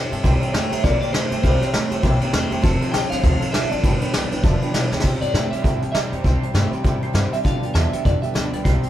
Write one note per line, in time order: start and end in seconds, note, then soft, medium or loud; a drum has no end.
0.00 0.10 E2 loud
0.00 0.11 G3 medium
0.00 0.12 C4 medium
0.00 0.11 E4 medium
0.10 0.23 G2 medium
0.10 0.23 C4 soft
0.10 0.24 E4 medium
0.10 0.23 G4 medium
0.10 0.19 C5 medium
0.10 0.19 E5 medium
0.10 0.20 A5 loud
0.10 ride medium
0.23 0.40 C2 medium
0.23 0.41 C3 medium
0.23 0.40 C3 medium
0.23 0.42 G3 medium
0.23 0.40 G3 medium
0.23 0.42 C4 medium
0.23 0.41 E4 loud
0.23 0.40 G4 loud
0.23 0.34 C5 loud
0.23 0.35 E5 loud
0.23 0.35 G5 loud
0.23 kick loud
0.23 ride medium
0.41 0.52 C3 medium
0.41 0.53 G3 medium
0.41 0.53 C4 soft
0.41 0.54 E4 medium
0.41 0.53 G4 medium
0.41 0.48 C5 medium
0.41 0.49 E5 medium
0.41 0.49 G5 medium
0.41 ride medium
0.53 0.70 F2 medium
0.53 0.70 C3 medium
0.53 0.71 G3 medium
0.53 0.70 A3 medium
0.53 0.72 C4 medium
0.53 0.71 E4 medium
0.53 0.69 G4 medium
0.53 0.64 C5 medium
0.53 0.65 E5 medium
0.53 0.72 G5 loud
0.53 snare loud
0.53 ride medium
0.70 0.82 E2 medium
0.70 0.82 C3 medium
0.70 0.82 A3 medium
0.70 0.83 C4 soft
0.70 0.84 E4 medium
0.70 0.83 G4 medium
0.70 0.78 C5 medium
0.70 0.79 E5 medium
0.70 0.84 E5 medium
0.70 0.79 A#5 medium
0.70 ride medium
0.83 1.00 A#1 loud
0.83 0.99 C3 medium
0.83 1.01 C3 medium
0.83 1.02 G3 medium
0.83 1.00 A#3 loud
0.83 1.02 C4 medium
0.83 1.01 E4 medium
0.83 0.99 G4 medium
0.83 0.94 C5 loud
0.83 0.99 D5 loud
0.83 0.94 E5 medium
0.83 0.95 G5 loud
0.83 kick loud
0.83 snare soft
0.83 ride medium
1.01 1.11 C3 medium
1.01 1.12 A#3 medium
1.01 1.13 C4 soft
1.01 1.14 E4 medium
1.01 1.13 G4 medium
1.01 1.09 C5 medium
1.01 1.12 D5 loud
1.01 1.09 E5 medium
1.01 1.10 G5 medium
1.01 muted upright bass stroke medium
1.01 ride medium
1.13 1.29 C3 medium
1.13 1.31 G3 medium
1.13 1.30 A3 loud
1.13 1.32 C4 medium
1.13 1.31 E4 medium
1.13 1.30 G4 medium
1.13 1.42 C5 loud
1.13 1.24 C5 medium
1.13 1.25 E5 medium
1.13 1.25 A5 medium
1.13 snare loud
1.13 ride medium
1.31 1.42 G2 medium
1.31 1.42 C3 medium
1.31 1.42 A3 medium
1.31 1.42 C4 soft
1.31 1.43 E4 soft
1.31 1.43 G4 medium
1.31 1.38 C5 medium
1.31 1.39 E5 medium
1.31 1.39 A5 medium
1.31 ride medium
1.42 1.60 C2 loud
1.42 1.61 C3 medium
1.42 1.59 C3 medium
1.42 1.61 G3 medium
1.42 1.60 G3 loud
1.42 1.61 C4 medium
1.42 1.61 E4 medium
1.42 1.59 G4 medium
1.42 2.47 C5 medium
1.42 1.54 C5 medium
1.42 1.55 E5 medium
1.42 1.55 G5 loud
1.42 kick loud
1.42 ride medium
1.60 1.72 C3 medium
1.60 1.72 G3 medium
1.60 1.72 C4 soft
1.60 1.73 E4 soft
1.60 1.73 G4 medium
1.60 1.69 C5 medium
1.60 1.69 E5 medium
1.60 1.69 G5 medium
1.60 muted upright bass stroke medium
1.60 snare soft
1.60 ride medium
1.73 1.90 F2 medium
1.73 1.89 C3 medium
1.73 1.91 G3 medium
1.73 1.90 A3 loud
1.73 1.91 C4 medium
1.73 1.91 E4 medium
1.73 1.89 G4 medium
1.73 1.84 C5 medium
1.73 1.85 E5 medium
1.73 1.85 A#5 medium
1.73 snare loud
1.73 ride medium
1.91 2.02 E2 medium
1.91 2.02 C3 medium
1.91 2.02 A3 medium
1.91 2.02 C4 medium
1.91 2.03 E4 medium
1.91 2.03 G4 medium
1.91 1.99 C5 medium
1.91 1.99 E5 medium
1.91 1.99 G5 loud
1.91 ride medium
2.03 2.20 A#1 loud
2.03 2.21 C3 medium
2.03 2.19 C3 medium
2.03 2.21 G3 medium
2.03 2.20 A#3 loud
2.03 2.21 C4 loud
2.03 2.21 E4 medium
2.03 2.20 G4 loud
2.03 2.14 C5 loud
2.03 2.14 E5 loud
2.03 2.15 G5 loud
2.03 kick loud
2.03 ride medium
2.21 2.32 C3 medium
2.21 2.32 A#3 medium
2.21 2.32 C4 medium
2.21 2.33 E4 medium
2.21 2.33 G4 medium
2.21 2.29 C5 medium
2.21 2.29 E5 medium
2.21 2.29 G5 loud
2.21 muted upright bass stroke medium
2.21 ride medium
2.32 2.50 E2 medium
2.32 2.49 C3 medium
2.32 2.51 G3 medium
2.32 2.50 A3 loud
2.32 2.51 C4 medium
2.32 2.50 E4 medium
2.32 2.49 G4 medium
2.32 2.44 C5 medium
2.32 snare loud
2.32 ride medium
2.50 2.62 E2 loud
2.50 2.62 C3 medium
2.50 2.62 A3 medium
2.50 2.61 C4 medium
2.50 2.62 E4 medium
2.50 2.63 G4 medium
2.50 2.58 C5 medium
2.50 2.59 E5 medium
2.50 2.59 G5 loud
2.50 ride medium
2.61 2.80 F1 medium
2.61 2.79 F2 medium
2.61 2.80 C3 medium
2.61 2.80 F3 medium
2.61 2.81 C4 loud
2.61 2.80 F4 medium
2.61 2.79 A4 loud
2.61 2.74 C5 loud
2.61 2.74 F5 loud
2.61 2.75 A5 loud
2.61 kick loud
2.61 ride medium
2.80 2.92 F2 medium
2.80 2.92 C3 medium
2.80 2.92 C4 medium
2.80 2.93 F4 medium
2.80 2.93 A4 medium
2.80 2.88 C5 medium
2.80 2.89 F5 medium
2.80 2.89 A5 medium
2.80 muted upright bass stroke medium
2.80 ride medium
2.92 3.10 A#1 loud
2.92 3.09 F2 medium
2.92 3.10 D3 loud
2.92 3.11 F3 medium
2.92 3.11 C4 medium
2.92 3.10 F4 medium
2.92 3.09 A4 medium
2.92 3.03 C5 medium
2.92 3.09 G5 loud
2.92 3.04 A5 medium
2.92 snare loud
2.92 ride medium
3.10 3.22 A1 medium
3.10 3.22 F2 medium
3.10 3.22 D3 medium
3.10 3.22 C4 medium
3.10 3.23 F4 soft
3.10 3.23 A4 medium
3.10 3.18 C5 medium
3.10 3.52 F5 loud
3.10 3.19 F5 medium
3.10 3.19 A5 medium
3.10 snare soft
3.10 ride medium
3.22 3.40 D2 loud
3.22 3.40 F2 medium
3.22 3.40 D#3 loud
3.22 3.41 F3 medium
3.22 3.41 C4 medium
3.22 3.40 F4 loud
3.22 3.39 A4 medium
3.22 3.34 C5 loud
3.22 3.34 F5 loud
3.22 3.35 A5 loud
3.22 kick loud
3.22 ride medium
3.40 3.52 F2 medium
3.40 3.53 D#3 medium
3.40 3.52 C4 soft
3.40 3.53 F4 medium
3.40 3.53 A4 medium
3.40 3.48 C5 medium
3.40 3.49 F5 medium
3.40 3.49 A5 medium
3.40 ride medium
3.52 3.70 A1 loud
3.52 3.70 F2 loud
3.52 3.70 D3 loud
3.52 3.71 F3 medium
3.52 3.71 C4 medium
3.52 3.71 F4 medium
3.52 3.70 A4 medium
3.52 3.64 C5 medium
3.52 3.71 E5 loud
3.52 3.65 A5 medium
3.52 snare loud
3.52 ride medium
3.71 3.82 A1 medium
3.71 3.82 F2 medium
3.71 3.82 D3 medium
3.71 3.83 C4 medium
3.71 3.84 F4 medium
3.71 3.83 A4 medium
3.71 3.78 C5 medium
3.71 4.73 D5 medium
3.71 3.79 F5 medium
3.71 3.79 A5 medium
3.71 ride medium
3.83 4.00 G1 medium
3.83 4.00 G2 medium
3.83 4.01 G2 medium
3.83 4.02 D3 medium
3.83 4.00 D3 loud
3.83 4.02 F3 medium
3.83 4.02 B3 medium
3.83 4.01 D4 medium
3.83 3.94 B4 medium
3.83 4.00 B4 medium
3.83 3.94 D5 medium
3.83 3.95 G5 loud
3.83 kick loud
3.83 ride medium
4.01 4.12 G2 medium
4.01 4.13 D3 medium
4.01 4.12 F3 soft
4.01 4.13 B3 soft
4.01 4.14 D4 medium
4.01 4.08 B4 medium
4.01 4.13 B4 medium
4.01 4.09 D5 medium
4.01 4.09 G5 medium
4.01 muted upright bass stroke medium
4.01 ride medium
4.13 4.30 C2 medium
4.13 4.30 G2 medium
4.13 4.30 E3 loud
4.13 4.31 F3 medium
4.13 4.32 B3 medium
4.13 4.31 D4 medium
4.13 4.24 B4 medium
4.13 4.30 B4 medium
4.13 4.24 D5 medium
4.13 4.25 G5 loud
4.13 snare loud
4.13 ride medium
4.31 4.42 B1 medium
4.31 4.42 G2 medium
4.31 4.42 E3 medium
4.31 4.43 F3 soft
4.31 4.44 B3 medium
4.31 4.44 D4 medium
4.31 4.38 B4 loud
4.31 4.43 B4 medium
4.31 4.39 D5 medium
4.31 4.39 G5 loud
4.31 ride medium
4.43 4.60 F1 medium
4.43 4.59 G2 medium
4.43 4.61 G2 medium
4.43 4.62 D3 medium
4.43 4.60 F3 medium
4.43 4.62 F3 loud
4.43 4.62 B3 loud
4.43 4.61 D4 medium
4.43 4.54 B4 loud
4.43 4.60 B4 medium
4.43 4.54 D5 loud
4.43 4.55 E5 loud
4.43 kick loud
4.43 ride medium
4.61 4.72 G2 medium
4.61 4.72 F3 medium
4.61 4.71 F3 soft
4.61 4.72 B3 medium
4.61 4.73 D4 medium
4.61 4.68 B4 medium
4.61 4.73 B4 medium
4.61 4.69 D5 medium
4.61 4.69 G5 loud
4.61 muted upright bass stroke medium
4.61 ride medium
4.72 4.90 B1 medium
4.72 4.90 G2 medium
4.72 4.90 E3 loud
4.72 4.91 F3 medium
4.72 4.91 B3 medium
4.72 4.90 D4 medium
4.72 4.84 B4 medium
4.72 4.89 B4 medium
4.72 4.84 D5 medium
4.72 4.84 G5 loud
4.72 snare loud
4.72 ride medium
4.90 5.02 D2 medium
4.90 5.02 G2 medium
4.90 5.02 E3 medium
4.90 5.03 F3 medium
4.90 5.03 B3 medium
4.90 5.04 D4 medium
4.90 4.98 B4 medium
4.90 5.03 B4 medium
4.90 4.99 D5 medium
4.90 4.99 G5 loud
4.90 snare medium
5.00 5.19 C2 medium
5.00 5.31 C3 medium
5.00 5.21 C3 medium
5.00 5.21 G3 medium
5.00 5.31 G3 medium
5.00 5.22 C4 medium
5.00 5.14 C5 loud
5.00 5.14 E5 loud
5.00 kick loud
5.00 snare medium
5.04 5.22 E4 loud
5.04 5.20 G4 medium
5.04 5.15 G5 loud
5.04 crash medium
5.20 5.32 G2 medium
5.20 5.33 C4 soft
5.20 5.34 E4 soft
5.20 5.34 G4 medium
5.20 5.28 C5 medium
5.20 5.50 D5 loud
5.20 5.29 E5 medium
5.20 5.29 G5 medium
5.20 closed hi-hat medium
5.32 5.49 A2 medium
5.32 5.52 C3 medium
5.32 5.50 C3 medium
5.32 5.52 G3 medium
5.32 5.50 A3 loud
5.32 5.52 C4 medium
5.32 5.52 E4 medium
5.32 5.51 G4 medium
5.32 5.44 C5 medium
5.32 5.44 E5 medium
5.32 5.45 G5 medium
5.32 snare loud
5.32 closed hi-hat medium
5.50 5.62 C3 medium
5.50 5.63 G3 medium
5.50 5.64 E4 soft
5.50 5.64 G4 soft
5.50 5.58 C5 medium
5.50 5.79 E5 medium
5.50 5.59 E5 medium
5.50 5.59 G5 medium
5.50 muted upright bass stroke medium
5.50 closed hi-hat medium
5.55 5.63 C4 soft
5.62 5.79 A2 loud
5.62 5.91 C3 medium
5.62 5.82 G3 medium
5.62 5.92 G3 medium
5.62 5.82 C4 medium
5.62 5.83 E4 medium
5.62 5.74 C5 medium
5.62 5.74 E5 medium
5.62 5.75 G5 loud
5.62 kick loud
5.62 closed hi-hat medium
5.66 5.81 G4 medium
5.81 5.95 E4 soft
5.81 5.94 G4 medium
5.81 5.88 C5 medium
5.81 5.89 E5 medium
5.81 5.89 A5 medium
5.81 muted upright bass stroke medium
5.81 closed hi-hat medium
5.85 5.94 C4 soft
5.92 6.09 G2 medium
5.92 6.10 C3 medium
5.92 6.12 C3 medium
5.92 6.10 G3 loud
5.92 6.12 G3 medium
5.92 6.13 C4 medium
5.92 6.12 E4 medium
5.92 6.04 C5 medium
5.92 5.97 E5 loud
5.92 6.04 E5 medium
5.92 6.05 G5 medium
5.92 snare loud
5.92 closed hi-hat medium
5.96 6.11 G4 medium
6.10 6.22 F2 medium
6.10 6.23 C3 medium
6.10 6.23 G3 medium
6.10 6.25 E4 medium
6.10 6.24 G4 soft
6.10 6.50 C5 medium
6.10 6.19 C5 medium
6.10 6.19 E5 medium
6.10 6.20 G5 medium
6.10 closed hi-hat medium
6.15 6.24 C4 soft
6.23 6.39 C2 medium
6.23 6.52 C3 medium
6.23 6.42 C3 medium
6.23 6.52 G3 medium
6.23 6.43 G3 medium
6.23 6.43 C4 medium
6.23 6.42 E4 medium
6.23 6.41 G4 medium
6.23 6.34 C5 loud
6.23 6.35 E5 medium
6.23 6.35 G5 loud
6.23 kick loud
6.23 closed hi-hat medium
6.40 6.53 C4 soft
6.40 6.54 E4 soft
6.40 6.54 G4 medium
6.40 6.49 C5 medium
6.40 6.49 E5 medium
6.40 6.50 A5 medium
6.40 muted upright bass stroke medium
6.40 closed hi-hat medium
6.53 6.69 G2 medium
6.53 6.72 C3 medium
6.53 6.70 C3 medium
6.53 6.72 G3 medium
6.53 6.71 A3 loud
6.53 6.73 C4 medium
6.53 6.72 E4 medium
6.53 6.71 G4 medium
6.53 6.65 C5 medium
6.53 6.65 E5 medium
6.53 6.66 G5 medium
6.53 snare loud
6.53 closed hi-hat medium
6.71 6.83 C3 medium
6.71 6.83 G3 medium
6.71 6.84 C4 soft
6.71 6.84 E4 medium
6.71 6.84 G4 medium
6.71 6.79 C5 medium
6.71 6.79 E5 medium
6.71 6.80 G5 loud
6.71 muted upright bass stroke medium
6.71 closed hi-hat medium
6.84 6.99 A2 medium
6.84 7.12 C3 medium
6.84 7.02 G3 medium
6.84 7.12 G3 medium
6.84 7.02 C4 medium
6.84 7.01 E4 medium
6.84 7.00 G4 medium
6.84 6.95 C5 loud
6.84 6.95 E5 loud
6.84 6.96 G5 loud
6.84 kick loud
6.84 closed hi-hat medium
7.01 7.13 C4 soft
7.01 7.13 E4 soft
7.01 7.13 G4 medium
7.01 7.10 C5 medium
7.01 7.34 C5 medium
7.01 7.10 E5 medium
7.01 7.10 G5 medium
7.01 muted upright bass stroke medium
7.01 closed hi-hat medium
7.13 7.29 G2 medium
7.13 7.32 C3 medium
7.13 7.30 C3 medium
7.13 7.32 G3 medium
7.13 7.31 G3 loud
7.13 7.32 C4 medium
7.13 7.32 E4 medium
7.13 7.30 G4 medium
7.13 7.25 C5 medium
7.13 snare loud
7.13 closed hi-hat medium
7.31 7.43 C3 medium
7.31 7.44 G3 medium
7.31 7.44 C4 soft
7.31 7.44 E4 soft
7.31 7.44 G4 medium
7.31 7.40 C5 medium
7.31 7.38 E5 loud
7.31 7.40 E5 medium
7.31 7.41 G5 medium
7.31 muted upright bass stroke medium
7.31 closed hi-hat medium
7.43 7.60 G1 medium
7.43 7.62 G2 medium
7.43 7.72 G2 medium
7.43 7.62 D3 medium
7.43 7.73 D3 medium
7.43 7.62 F3 medium
7.43 7.62 B3 medium
7.43 7.61 F4 medium
7.43 7.60 G4 medium
7.43 7.55 B4 loud
7.43 7.55 D5 medium
7.43 7.73 F5 loud
7.43 7.56 G5 loud
7.43 kick loud
7.43 closed hi-hat medium
7.62 7.73 D2 medium
7.62 7.73 F3 soft
7.62 7.74 B3 soft
7.62 7.74 F4 soft
7.62 7.74 G4 medium
7.62 7.70 B4 medium
7.62 7.70 D5 medium
7.62 7.70 G5 medium
7.62 closed hi-hat medium
7.74 7.90 E2 medium
7.74 7.92 G2 medium
7.74 7.91 G2 medium
7.74 7.92 D3 medium
7.74 7.91 E3 loud
7.74 7.93 F3 medium
7.74 7.92 B3 medium
7.74 7.91 F4 medium
7.74 7.90 G4 medium
7.74 7.86 D5 medium
7.74 8.05 E5 medium
7.74 snare loud
7.74 closed hi-hat medium
7.91 8.04 G2 medium
7.91 8.04 D3 medium
7.91 8.03 F3 soft
7.91 8.04 B3 soft
7.91 8.05 F4 medium
7.91 8.04 G4 medium
7.91 8.00 B4 medium
7.91 8.00 D5 medium
7.91 8.00 G5 medium
7.91 muted upright bass stroke medium
7.91 closed hi-hat medium
8.04 8.20 F2 loud
8.04 8.33 G2 medium
8.04 8.33 D3 medium
8.04 8.23 F3 medium
8.04 8.22 B3 medium
8.04 8.21 F4 medium
8.04 8.21 G4 medium
8.04 8.15 B4 medium
8.04 8.16 D5 medium
8.04 8.22 D5 loud
8.04 8.16 G5 loud
8.04 kick loud
8.04 closed hi-hat medium
8.22 8.33 F3 soft
8.22 8.34 B3 soft
8.22 8.34 F4 medium
8.22 8.34 G4 medium
8.22 8.30 B4 medium
8.22 8.30 D5 medium
8.22 8.35 E5 medium
8.22 8.31 G5 medium
8.22 muted upright bass stroke medium
8.22 closed hi-hat medium
8.33 8.50 D2 medium
8.33 8.52 G2 medium
8.33 8.51 G2 medium
8.33 8.53 D3 medium
8.33 8.52 D3 medium
8.33 8.53 F3 medium
8.33 8.53 B3 medium
8.33 8.52 F4 medium
8.33 8.51 G4 medium
8.33 8.45 B4 medium
8.33 8.45 D5 medium
8.33 8.52 D5 medium
8.33 8.46 G5 medium
8.33 snare loud
8.33 closed hi-hat medium
8.52 8.63 C2 medium
8.52 8.64 G2 medium
8.52 8.64 D3 medium
8.52 8.64 F3 soft
8.52 8.65 B3 soft
8.52 8.65 F4 medium
8.52 8.65 G4 soft
8.52 8.60 B4 medium
8.52 8.60 D5 medium
8.52 8.58 D5 medium
8.52 8.61 G5 medium
8.52 closed hi-hat medium
8.63 8.80 C2 medium
8.63 8.83 C3 medium
8.63 8.90 C3 medium
8.63 8.83 G3 medium
8.63 8.90 G3 medium
8.63 8.83 C4 medium
8.63 8.82 E4 medium
8.63 8.81 G4 medium
8.63 8.75 C5 medium
8.63 8.90 C5 medium
8.63 8.75 E5 medium
8.63 8.76 G5 loud
8.63 kick loud
8.63 closed hi-hat medium
8.81 8.90 C4 soft
8.81 8.90 E4 medium
8.81 8.90 G4 medium
8.81 8.90 C5 medium
8.81 8.90 E5 medium
8.81 8.90 G5 medium
8.81 closed hi-hat medium